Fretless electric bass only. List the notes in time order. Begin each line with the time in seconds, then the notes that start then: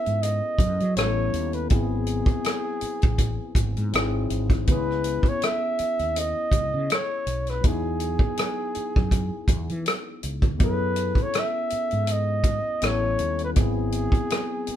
0.07 G#2
0.59 F#2
0.81 F#3
0.96 A1
1.34 D#2
1.71 G#1
2.82 muted fretless electric bass stroke
3.04 A1
3.55 G#1
3.77 G#2
3.93 G#1
4.30 G#1
4.68 C#2
5.80 muted fretless electric bass stroke
6.00 D#2
6.52 C#2
6.74 C#3
7.27 B1
7.64 E2
8.77 muted fretless electric bass stroke
8.97 F#2
9.48 E2
9.70 E3
10.24 C#2
10.61 F#2
11.72 muted fretless electric bass stroke
11.93 G#2
12.83 A1
13.20 D#2
13.57 G#1
14.68 muted fretless electric bass stroke